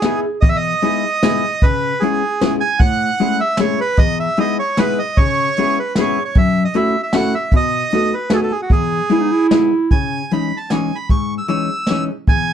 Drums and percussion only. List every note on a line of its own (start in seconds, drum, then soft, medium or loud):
0.02 snare medium
0.02 closed hi-hat soft
0.42 kick medium
0.42 closed hi-hat soft
0.82 closed hi-hat medium
1.23 snare medium
1.23 closed hi-hat medium
1.62 kick medium
1.62 closed hi-hat soft
2.03 closed hi-hat soft
2.41 snare medium
2.41 closed hi-hat medium
2.79 kick medium
2.79 closed hi-hat soft
3.18 closed hi-hat medium
3.57 snare medium
3.57 closed hi-hat medium
3.97 kick medium
3.97 closed hi-hat medium
4.37 closed hi-hat soft
4.77 snare medium
4.77 closed hi-hat medium
5.16 kick medium
5.16 closed hi-hat soft
5.56 closed hi-hat soft
5.95 snare medium
5.95 closed hi-hat medium
6.35 kick medium
6.35 closed hi-hat soft
6.74 closed hi-hat soft
7.13 snare medium
7.13 closed hi-hat medium
7.51 kick medium
7.51 closed hi-hat soft
7.90 closed hi-hat medium
8.30 snare medium
8.30 closed hi-hat medium
8.70 kick medium
8.70 closed hi-hat soft
9.10 closed hi-hat medium
9.51 snare medium
9.51 closed hi-hat medium
9.91 kick medium
9.91 closed hi-hat soft
10.31 closed hi-hat soft
10.70 snare medium
10.70 closed hi-hat medium
11.09 kick medium
11.09 closed hi-hat soft
11.48 closed hi-hat soft
11.87 snare medium
11.87 closed hi-hat soft
12.27 kick medium
12.27 closed hi-hat soft